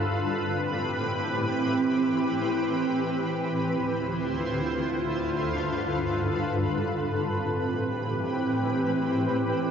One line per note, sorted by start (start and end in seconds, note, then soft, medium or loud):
0.00 3.51 B4 medium
0.10 3.51 A2 medium
0.10 3.51 E3 medium
0.10 3.51 C4 medium
0.10 3.51 G4 medium
3.55 5.26 D2 medium
3.55 6.97 D3 medium
3.55 5.26 E4 medium
3.55 6.97 F4 medium
3.55 5.26 C5 medium
5.28 6.99 G2 medium
5.28 6.98 A4 medium
5.28 6.99 B4 medium
7.00 9.71 A2 medium
7.00 9.71 E3 medium
7.00 9.71 C4 medium
7.00 9.71 G4 medium
7.00 9.71 B4 medium